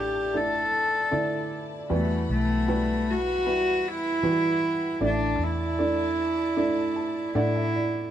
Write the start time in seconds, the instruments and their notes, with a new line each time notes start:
Already playing: fingered electric bass A1, upright piano D2 D3 A3 D4 E4 D5, string section E4 A4 D5 A5
0.00 cello G4
0.34 upright piano A3 D4 E4 D5, cello A4
1.11 fingered electric bass D3, upright piano A3 D4 E4 D5
1.90 upright piano E2 E3 G3 E4 F#4 B4, fingered electric bass E2, cello A3, string section F#5 B5
2.29 fingered electric bass B1, cello A3
2.68 upright piano G3 E4 F#4 B4
3.10 cello F#4
3.46 upright piano G3 E4 F#4 B4
3.88 cello E4
4.23 fingered electric bass E3, upright piano G3 E4 F#4 B4
5.00 fingered electric bass A1, upright piano A1 A2 A3 D4 E4 D5, string section A4 D5 A5
5.06 cello D4
5.39 fingered electric bass E2
5.43 cello E4
5.78 upright piano A3 D4 E4 D5
6.57 upright piano A3 D4 E4 D5
6.96 upright piano A5
7.35 fingered electric bass A2, upright piano A3 D4 E4 D5 F#5, cello E4
7.56 upright piano E5
7.75 upright piano D5